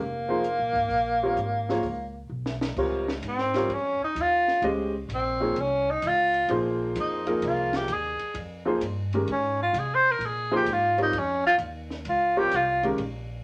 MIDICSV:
0, 0, Header, 1, 6, 480
1, 0, Start_track
1, 0, Tempo, 464396
1, 943, Time_signature, 4, 2, 24, 8
1, 13891, End_track
2, 0, Start_track
2, 0, Title_t, "Tenor saxophone"
2, 0, Program_c, 0, 66
2, 0, Note_on_c, 0, 58, 80
2, 2377, Note_off_c, 0, 58, 0
2, 3394, Note_on_c, 0, 60, 74
2, 3862, Note_on_c, 0, 61, 67
2, 3878, Note_off_c, 0, 60, 0
2, 4167, Note_off_c, 0, 61, 0
2, 4173, Note_on_c, 0, 63, 80
2, 4350, Note_on_c, 0, 65, 88
2, 4366, Note_off_c, 0, 63, 0
2, 4809, Note_off_c, 0, 65, 0
2, 5314, Note_on_c, 0, 60, 65
2, 5791, Note_on_c, 0, 61, 74
2, 5806, Note_off_c, 0, 60, 0
2, 6104, Note_on_c, 0, 63, 84
2, 6120, Note_off_c, 0, 61, 0
2, 6270, Note_on_c, 0, 65, 89
2, 6285, Note_off_c, 0, 63, 0
2, 6730, Note_off_c, 0, 65, 0
2, 7238, Note_on_c, 0, 63, 70
2, 7724, Note_on_c, 0, 65, 80
2, 7739, Note_off_c, 0, 63, 0
2, 8019, Note_on_c, 0, 67, 88
2, 8034, Note_off_c, 0, 65, 0
2, 8197, Note_on_c, 0, 68, 76
2, 8213, Note_off_c, 0, 67, 0
2, 8654, Note_off_c, 0, 68, 0
2, 9631, Note_on_c, 0, 61, 75
2, 9916, Note_off_c, 0, 61, 0
2, 9944, Note_on_c, 0, 65, 77
2, 10115, Note_on_c, 0, 68, 82
2, 10131, Note_off_c, 0, 65, 0
2, 10279, Note_on_c, 0, 72, 96
2, 10294, Note_off_c, 0, 68, 0
2, 10449, Note_on_c, 0, 70, 86
2, 10464, Note_off_c, 0, 72, 0
2, 10600, Note_on_c, 0, 68, 81
2, 10615, Note_off_c, 0, 70, 0
2, 10901, Note_off_c, 0, 68, 0
2, 10914, Note_on_c, 0, 67, 99
2, 11088, Note_on_c, 0, 65, 83
2, 11104, Note_off_c, 0, 67, 0
2, 11383, Note_off_c, 0, 65, 0
2, 11389, Note_on_c, 0, 63, 85
2, 11560, Note_on_c, 0, 61, 77
2, 11575, Note_off_c, 0, 63, 0
2, 11843, Note_off_c, 0, 61, 0
2, 11849, Note_on_c, 0, 65, 94
2, 11937, Note_off_c, 0, 65, 0
2, 12497, Note_on_c, 0, 65, 86
2, 12795, Note_on_c, 0, 67, 108
2, 12811, Note_off_c, 0, 65, 0
2, 12973, Note_on_c, 0, 65, 87
2, 12989, Note_off_c, 0, 67, 0
2, 13286, Note_off_c, 0, 65, 0
2, 13891, End_track
3, 0, Start_track
3, 0, Title_t, "Upright piano"
3, 0, Program_c, 1, 0
3, 295, Note_on_c, 1, 53, 60
3, 299, Note_on_c, 1, 58, 54
3, 302, Note_on_c, 1, 63, 59
3, 305, Note_on_c, 1, 68, 56
3, 312, Note_on_c, 1, 72, 64
3, 440, Note_off_c, 1, 53, 0
3, 442, Note_off_c, 1, 58, 0
3, 444, Note_off_c, 1, 63, 0
3, 445, Note_off_c, 1, 68, 0
3, 448, Note_off_c, 1, 72, 0
3, 1269, Note_on_c, 1, 55, 60
3, 1272, Note_on_c, 1, 65, 54
3, 1274, Note_on_c, 1, 60, 51
3, 1277, Note_on_c, 1, 73, 64
3, 1281, Note_on_c, 1, 70, 56
3, 1408, Note_off_c, 1, 55, 0
3, 1409, Note_off_c, 1, 65, 0
3, 1410, Note_off_c, 1, 60, 0
3, 1411, Note_off_c, 1, 73, 0
3, 1414, Note_off_c, 1, 70, 0
3, 1755, Note_on_c, 1, 53, 58
3, 1756, Note_on_c, 1, 63, 54
3, 1758, Note_on_c, 1, 58, 52
3, 1761, Note_on_c, 1, 68, 52
3, 1764, Note_on_c, 1, 73, 63
3, 1891, Note_off_c, 1, 53, 0
3, 1891, Note_off_c, 1, 63, 0
3, 1892, Note_off_c, 1, 58, 0
3, 1894, Note_off_c, 1, 68, 0
3, 1895, Note_off_c, 1, 73, 0
3, 2869, Note_on_c, 1, 55, 58
3, 2871, Note_on_c, 1, 60, 57
3, 2873, Note_on_c, 1, 65, 57
3, 2879, Note_on_c, 1, 70, 55
3, 2881, Note_on_c, 1, 73, 62
3, 3161, Note_off_c, 1, 55, 0
3, 3161, Note_off_c, 1, 60, 0
3, 3162, Note_off_c, 1, 65, 0
3, 3166, Note_off_c, 1, 70, 0
3, 3166, Note_off_c, 1, 73, 0
3, 3674, Note_on_c, 1, 55, 57
3, 3676, Note_on_c, 1, 60, 54
3, 3680, Note_on_c, 1, 65, 52
3, 3681, Note_on_c, 1, 70, 52
3, 3689, Note_on_c, 1, 73, 64
3, 3811, Note_off_c, 1, 55, 0
3, 3813, Note_off_c, 1, 60, 0
3, 3815, Note_off_c, 1, 65, 0
3, 3815, Note_off_c, 1, 70, 0
3, 3819, Note_off_c, 1, 73, 0
3, 4785, Note_on_c, 1, 56, 61
3, 4789, Note_on_c, 1, 61, 58
3, 4796, Note_on_c, 1, 67, 52
3, 4797, Note_on_c, 1, 75, 71
3, 4798, Note_on_c, 1, 72, 57
3, 5080, Note_off_c, 1, 56, 0
3, 5082, Note_off_c, 1, 61, 0
3, 5085, Note_off_c, 1, 67, 0
3, 5086, Note_off_c, 1, 72, 0
3, 5086, Note_off_c, 1, 75, 0
3, 5585, Note_on_c, 1, 58, 54
3, 5588, Note_on_c, 1, 53, 56
3, 5594, Note_on_c, 1, 63, 56
3, 5596, Note_on_c, 1, 68, 55
3, 5598, Note_on_c, 1, 73, 65
3, 5728, Note_off_c, 1, 58, 0
3, 5730, Note_off_c, 1, 53, 0
3, 5733, Note_off_c, 1, 63, 0
3, 5734, Note_off_c, 1, 68, 0
3, 5735, Note_off_c, 1, 73, 0
3, 6712, Note_on_c, 1, 53, 67
3, 6715, Note_on_c, 1, 58, 59
3, 6722, Note_on_c, 1, 63, 55
3, 6724, Note_on_c, 1, 68, 56
3, 6726, Note_on_c, 1, 72, 73
3, 7452, Note_off_c, 1, 53, 0
3, 7454, Note_off_c, 1, 58, 0
3, 7457, Note_off_c, 1, 63, 0
3, 7458, Note_off_c, 1, 68, 0
3, 7459, Note_off_c, 1, 72, 0
3, 7511, Note_on_c, 1, 53, 59
3, 7515, Note_on_c, 1, 58, 58
3, 7515, Note_on_c, 1, 63, 57
3, 7520, Note_on_c, 1, 70, 73
3, 7523, Note_on_c, 1, 68, 57
3, 8117, Note_off_c, 1, 53, 0
3, 8119, Note_off_c, 1, 58, 0
3, 8119, Note_off_c, 1, 63, 0
3, 8121, Note_off_c, 1, 70, 0
3, 8123, Note_off_c, 1, 68, 0
3, 8946, Note_on_c, 1, 53, 65
3, 8951, Note_on_c, 1, 63, 64
3, 8952, Note_on_c, 1, 58, 65
3, 8958, Note_on_c, 1, 68, 65
3, 8960, Note_on_c, 1, 72, 76
3, 9090, Note_off_c, 1, 53, 0
3, 9093, Note_off_c, 1, 58, 0
3, 9093, Note_off_c, 1, 63, 0
3, 9096, Note_off_c, 1, 68, 0
3, 9097, Note_off_c, 1, 72, 0
3, 9446, Note_on_c, 1, 56, 53
3, 9447, Note_on_c, 1, 51, 61
3, 9451, Note_on_c, 1, 61, 51
3, 9454, Note_on_c, 1, 67, 53
3, 9457, Note_on_c, 1, 70, 64
3, 9580, Note_off_c, 1, 51, 0
3, 9580, Note_off_c, 1, 56, 0
3, 9583, Note_off_c, 1, 61, 0
3, 9584, Note_off_c, 1, 67, 0
3, 9585, Note_off_c, 1, 70, 0
3, 10867, Note_on_c, 1, 53, 72
3, 10869, Note_on_c, 1, 58, 67
3, 10870, Note_on_c, 1, 63, 64
3, 10870, Note_on_c, 1, 68, 61
3, 10880, Note_on_c, 1, 72, 81
3, 11011, Note_off_c, 1, 53, 0
3, 11011, Note_off_c, 1, 58, 0
3, 11012, Note_off_c, 1, 63, 0
3, 11012, Note_off_c, 1, 68, 0
3, 11017, Note_off_c, 1, 72, 0
3, 11345, Note_on_c, 1, 55, 59
3, 11345, Note_on_c, 1, 60, 55
3, 11349, Note_on_c, 1, 65, 57
3, 11356, Note_on_c, 1, 70, 55
3, 11357, Note_on_c, 1, 73, 66
3, 11489, Note_off_c, 1, 55, 0
3, 11489, Note_off_c, 1, 60, 0
3, 11491, Note_off_c, 1, 65, 0
3, 11495, Note_off_c, 1, 70, 0
3, 11495, Note_off_c, 1, 73, 0
3, 12782, Note_on_c, 1, 55, 72
3, 12785, Note_on_c, 1, 65, 65
3, 12786, Note_on_c, 1, 60, 62
3, 12787, Note_on_c, 1, 70, 64
3, 12789, Note_on_c, 1, 73, 76
3, 12927, Note_off_c, 1, 55, 0
3, 12928, Note_off_c, 1, 65, 0
3, 12929, Note_off_c, 1, 60, 0
3, 12929, Note_off_c, 1, 70, 0
3, 12930, Note_off_c, 1, 73, 0
3, 13260, Note_on_c, 1, 51, 64
3, 13266, Note_on_c, 1, 61, 60
3, 13267, Note_on_c, 1, 56, 57
3, 13273, Note_on_c, 1, 67, 56
3, 13278, Note_on_c, 1, 70, 70
3, 13405, Note_off_c, 1, 51, 0
3, 13408, Note_off_c, 1, 61, 0
3, 13409, Note_off_c, 1, 56, 0
3, 13412, Note_off_c, 1, 67, 0
3, 13414, Note_off_c, 1, 70, 0
3, 13891, End_track
4, 0, Start_track
4, 0, Title_t, "Upright bass"
4, 0, Program_c, 2, 32
4, 0, Note_on_c, 2, 29, 79
4, 572, Note_off_c, 2, 29, 0
4, 609, Note_on_c, 2, 34, 52
4, 745, Note_off_c, 2, 34, 0
4, 751, Note_on_c, 2, 32, 69
4, 910, Note_off_c, 2, 32, 0
4, 917, Note_on_c, 2, 34, 75
4, 1376, Note_off_c, 2, 34, 0
4, 1405, Note_on_c, 2, 32, 72
4, 1860, Note_off_c, 2, 32, 0
4, 1887, Note_on_c, 2, 37, 76
4, 2342, Note_off_c, 2, 37, 0
4, 2372, Note_on_c, 2, 35, 64
4, 2824, Note_off_c, 2, 35, 0
4, 2857, Note_on_c, 2, 37, 76
4, 3321, Note_off_c, 2, 37, 0
4, 3327, Note_on_c, 2, 44, 76
4, 3797, Note_off_c, 2, 44, 0
4, 3803, Note_on_c, 2, 41, 76
4, 4117, Note_off_c, 2, 41, 0
4, 4292, Note_on_c, 2, 39, 76
4, 4765, Note_off_c, 2, 39, 0
4, 4773, Note_on_c, 2, 37, 83
4, 5246, Note_off_c, 2, 37, 0
4, 5257, Note_on_c, 2, 34, 81
4, 5728, Note_off_c, 2, 34, 0
4, 5739, Note_on_c, 2, 36, 76
4, 6210, Note_off_c, 2, 36, 0
4, 6228, Note_on_c, 2, 37, 84
4, 6694, Note_off_c, 2, 37, 0
4, 6701, Note_on_c, 2, 34, 79
4, 7171, Note_off_c, 2, 34, 0
4, 7191, Note_on_c, 2, 41, 83
4, 7656, Note_off_c, 2, 41, 0
4, 7670, Note_on_c, 2, 36, 75
4, 8136, Note_off_c, 2, 36, 0
4, 8150, Note_on_c, 2, 39, 82
4, 8453, Note_off_c, 2, 39, 0
4, 8624, Note_on_c, 2, 41, 78
4, 9089, Note_off_c, 2, 41, 0
4, 9096, Note_on_c, 2, 43, 78
4, 9569, Note_off_c, 2, 43, 0
4, 9591, Note_on_c, 2, 44, 80
4, 10052, Note_off_c, 2, 44, 0
4, 10058, Note_on_c, 2, 48, 80
4, 10524, Note_off_c, 2, 48, 0
4, 10530, Note_on_c, 2, 46, 75
4, 11005, Note_off_c, 2, 46, 0
4, 11016, Note_on_c, 2, 44, 81
4, 11488, Note_off_c, 2, 44, 0
4, 11495, Note_on_c, 2, 41, 70
4, 11963, Note_off_c, 2, 41, 0
4, 11969, Note_on_c, 2, 39, 84
4, 12444, Note_off_c, 2, 39, 0
4, 12457, Note_on_c, 2, 37, 80
4, 12928, Note_off_c, 2, 37, 0
4, 12934, Note_on_c, 2, 36, 80
4, 13397, Note_off_c, 2, 36, 0
4, 13403, Note_on_c, 2, 34, 79
4, 13880, Note_off_c, 2, 34, 0
4, 13891, End_track
5, 0, Start_track
5, 0, Title_t, "Muted upright bass strokes"
5, 4129, Note_on_c, 9, 29, 35
5, 4232, Note_off_c, 9, 29, 0
5, 8477, Note_on_c, 9, 29, 40
5, 8580, Note_off_c, 9, 29, 0
5, 13891, End_track
6, 0, Start_track
6, 0, Title_t, "Drums"
6, 457, Note_on_c, 9, 42, 45
6, 560, Note_off_c, 9, 42, 0
6, 782, Note_on_c, 9, 46, 33
6, 783, Note_on_c, 9, 36, 48
6, 886, Note_off_c, 9, 36, 0
6, 886, Note_off_c, 9, 46, 0
6, 933, Note_on_c, 9, 46, 40
6, 1036, Note_off_c, 9, 46, 0
6, 1414, Note_on_c, 9, 42, 45
6, 1517, Note_off_c, 9, 42, 0
6, 1749, Note_on_c, 9, 38, 34
6, 1852, Note_off_c, 9, 38, 0
6, 1891, Note_on_c, 9, 46, 40
6, 1994, Note_off_c, 9, 46, 0
6, 2541, Note_on_c, 9, 38, 50
6, 2645, Note_off_c, 9, 38, 0
6, 2701, Note_on_c, 9, 38, 70
6, 2804, Note_off_c, 9, 38, 0
6, 2858, Note_on_c, 9, 36, 65
6, 2859, Note_on_c, 9, 49, 64
6, 2962, Note_off_c, 9, 36, 0
6, 2962, Note_off_c, 9, 49, 0
6, 3187, Note_on_c, 9, 38, 58
6, 3290, Note_off_c, 9, 38, 0
6, 3333, Note_on_c, 9, 44, 48
6, 3333, Note_on_c, 9, 51, 60
6, 3436, Note_off_c, 9, 44, 0
6, 3436, Note_off_c, 9, 51, 0
6, 3496, Note_on_c, 9, 38, 27
6, 3600, Note_off_c, 9, 38, 0
6, 3659, Note_on_c, 9, 51, 42
6, 3661, Note_on_c, 9, 38, 40
6, 3763, Note_off_c, 9, 51, 0
6, 3764, Note_off_c, 9, 38, 0
6, 3820, Note_on_c, 9, 51, 48
6, 3924, Note_off_c, 9, 51, 0
6, 4300, Note_on_c, 9, 44, 46
6, 4300, Note_on_c, 9, 51, 54
6, 4403, Note_off_c, 9, 44, 0
6, 4403, Note_off_c, 9, 51, 0
6, 4631, Note_on_c, 9, 38, 31
6, 4734, Note_off_c, 9, 38, 0
6, 4777, Note_on_c, 9, 51, 51
6, 4881, Note_off_c, 9, 51, 0
6, 5267, Note_on_c, 9, 44, 47
6, 5267, Note_on_c, 9, 51, 58
6, 5371, Note_off_c, 9, 44, 0
6, 5371, Note_off_c, 9, 51, 0
6, 5747, Note_on_c, 9, 51, 49
6, 5850, Note_off_c, 9, 51, 0
6, 6223, Note_on_c, 9, 44, 46
6, 6223, Note_on_c, 9, 51, 61
6, 6327, Note_off_c, 9, 44, 0
6, 6327, Note_off_c, 9, 51, 0
6, 6553, Note_on_c, 9, 51, 40
6, 6656, Note_off_c, 9, 51, 0
6, 6703, Note_on_c, 9, 51, 51
6, 6806, Note_off_c, 9, 51, 0
6, 7188, Note_on_c, 9, 44, 56
6, 7188, Note_on_c, 9, 51, 56
6, 7292, Note_off_c, 9, 44, 0
6, 7292, Note_off_c, 9, 51, 0
6, 7510, Note_on_c, 9, 51, 42
6, 7613, Note_off_c, 9, 51, 0
6, 7670, Note_on_c, 9, 51, 61
6, 7773, Note_off_c, 9, 51, 0
6, 7989, Note_on_c, 9, 51, 44
6, 7992, Note_on_c, 9, 38, 53
6, 8093, Note_off_c, 9, 51, 0
6, 8096, Note_off_c, 9, 38, 0
6, 8144, Note_on_c, 9, 44, 50
6, 8144, Note_on_c, 9, 51, 62
6, 8247, Note_off_c, 9, 44, 0
6, 8247, Note_off_c, 9, 51, 0
6, 8468, Note_on_c, 9, 51, 41
6, 8572, Note_off_c, 9, 51, 0
6, 8626, Note_on_c, 9, 51, 61
6, 8729, Note_off_c, 9, 51, 0
6, 9108, Note_on_c, 9, 44, 56
6, 9108, Note_on_c, 9, 51, 63
6, 9211, Note_off_c, 9, 44, 0
6, 9211, Note_off_c, 9, 51, 0
6, 9433, Note_on_c, 9, 51, 42
6, 9537, Note_off_c, 9, 51, 0
6, 9587, Note_on_c, 9, 51, 57
6, 9690, Note_off_c, 9, 51, 0
6, 10068, Note_on_c, 9, 44, 58
6, 10068, Note_on_c, 9, 51, 55
6, 10171, Note_off_c, 9, 44, 0
6, 10171, Note_off_c, 9, 51, 0
6, 10550, Note_on_c, 9, 51, 55
6, 10654, Note_off_c, 9, 51, 0
6, 11020, Note_on_c, 9, 44, 58
6, 11020, Note_on_c, 9, 51, 63
6, 11123, Note_off_c, 9, 44, 0
6, 11123, Note_off_c, 9, 51, 0
6, 11349, Note_on_c, 9, 51, 41
6, 11452, Note_off_c, 9, 51, 0
6, 11504, Note_on_c, 9, 51, 59
6, 11607, Note_off_c, 9, 51, 0
6, 11972, Note_on_c, 9, 44, 47
6, 11972, Note_on_c, 9, 51, 61
6, 12075, Note_off_c, 9, 44, 0
6, 12075, Note_off_c, 9, 51, 0
6, 12304, Note_on_c, 9, 38, 31
6, 12408, Note_off_c, 9, 38, 0
6, 12455, Note_on_c, 9, 51, 63
6, 12558, Note_off_c, 9, 51, 0
6, 12934, Note_on_c, 9, 44, 59
6, 12934, Note_on_c, 9, 51, 62
6, 13037, Note_off_c, 9, 44, 0
6, 13037, Note_off_c, 9, 51, 0
6, 13264, Note_on_c, 9, 51, 41
6, 13367, Note_off_c, 9, 51, 0
6, 13416, Note_on_c, 9, 51, 57
6, 13519, Note_off_c, 9, 51, 0
6, 13891, End_track
0, 0, End_of_file